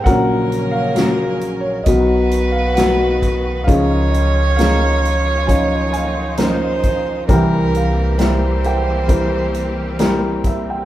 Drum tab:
HH |xxxxxxxx|xxxxxxxx|xxxxxxxx|
SD |--o---o-|--o---o-|--o---o-|
BD |o---o--o|o---o--o|o---o--o|